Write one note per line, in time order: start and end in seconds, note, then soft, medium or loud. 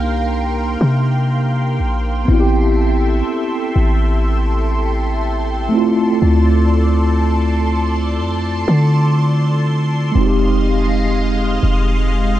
0.00 0.77 C2 loud
0.00 2.23 A#3 medium
0.00 2.24 D4 medium
0.00 2.25 D#4 medium
0.00 2.27 G4 medium
0.00 2.24 A#4 medium
0.00 2.24 F5 medium
0.00 5.68 G5 medium
0.00 12.40 C6 medium
0.81 1.81 C3 loud
1.79 2.26 A#1 loud
2.25 3.23 A1 loud
2.25 5.67 B3 medium
2.25 5.68 C4 medium
2.25 10.11 A4 medium
2.25 5.69 E5 medium
2.31 5.70 E4 medium
2.31 2.38 F#4 medium
2.40 5.74 G4 medium
3.76 5.69 A1 loud
5.69 9.60 A3 medium
5.69 9.62 C4 medium
5.73 9.63 E4 medium
5.73 10.11 D5 medium
5.73 10.11 A5 medium
5.77 9.64 F4 medium
6.22 8.20 D2 loud
8.19 8.65 F2 loud
8.68 10.11 D3 loud
10.12 11.59 F1 loud
10.12 12.40 G#3 medium
10.12 12.40 C4 medium
10.12 12.40 D#5 medium
10.12 12.40 F5 medium
10.18 12.40 D#4 medium
10.18 10.25 F#4 medium
10.27 12.40 G4 medium
11.63 12.40 F1 loud